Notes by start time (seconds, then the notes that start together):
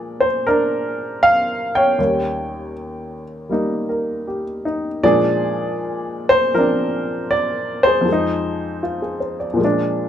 Already playing: A#2 F3 G#3 D4 G#4 D5
0.20 C5
0.47 D4 A#4
1.23 F5
1.75 C#5 G5
1.99 D#2 D#3 G3 C#4
3.49 G3 A#3 D#4
3.89 A#4
4.27 G4
4.65 D#4
5.03 A#2 F3 G#3 D4 G#4 D5
6.29 C5
6.54 F3 C4 A#4
6.58 D4
7.31 D5
7.83 G#4 C5
8.01 F2
8.05 F3 G#3
8.12 D#4
8.83 F4
9.02 G#4
9.20 C5
9.40 D5
9.54 A#2 F3
9.61 G#3 D4